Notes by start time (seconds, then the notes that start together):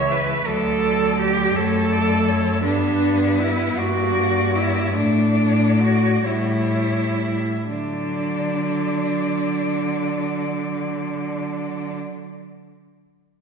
Already playing: C#2 E3 C#5 E5
0.12 B4
0.46 D2 F#3 A4 D5
1.19 G4
1.56 F#2 A3 A4 C#5
1.92 D5
2.28 C#5
2.64 G2 B3 D4 B4
3.39 E4
3.77 G2 A#3 F#4 D5
4.55 E4
4.96 A2 A3 D4 D5
5.80 F#4
6.25 A2 G3 E4 C#5
7.69 D3 F#3 D4 D5